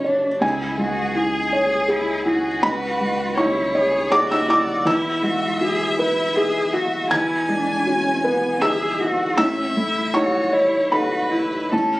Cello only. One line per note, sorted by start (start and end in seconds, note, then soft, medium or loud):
0.05 0.41 D4 medium
0.42 0.81 E4 medium
0.79 1.17 F#4 medium
1.16 1.91 G#4 medium
1.90 2.25 E4 medium
2.26 3.39 F#4 medium
3.38 3.76 E4 medium
3.75 4.13 G#4 medium
4.11 4.87 F#4 medium
4.86 5.24 E4 medium
5.23 5.61 F#4 medium
5.59 5.97 G#4 medium
5.97 6.37 E4 medium
6.35 6.74 G#4 medium
6.73 7.10 F#4 medium
7.11 7.50 E4 medium
7.49 7.87 D4 medium
7.85 8.25 C#4 medium
8.23 8.64 B3 medium
8.62 9.01 G#4 medium
9.00 9.40 F#4 medium
9.39 9.77 C#4 medium
9.76 10.16 E4 medium
10.14 10.53 F#4 medium
10.52 10.92 E4 medium
10.90 11.32 F#4 medium
11.31 11.73 E4 medium
11.71 12.00 C#4 medium